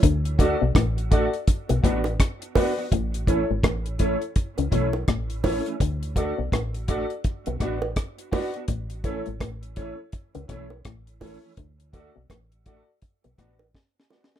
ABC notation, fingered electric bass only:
X:1
M:4/4
L:1/16
Q:"Swing 16ths" 1/4=83
K:Dlyd
V:1 name="Fingered electric bass" clef=bass
D,,3 B,,, A,,,3 z2 B,,, A,,,2 z4 | A,,,3 G,,, A,,,3 z2 C,, B,,,2 A,,,3 z | D,,3 B,,, A,,,3 z2 B,,, A,,,2 z4 | A,,,3 G,,, A,,,3 z2 C,, B,,,2 A,,,3 z |
D,,3 B,,, A,,,3 z2 B,,, A,,,2 z4 |]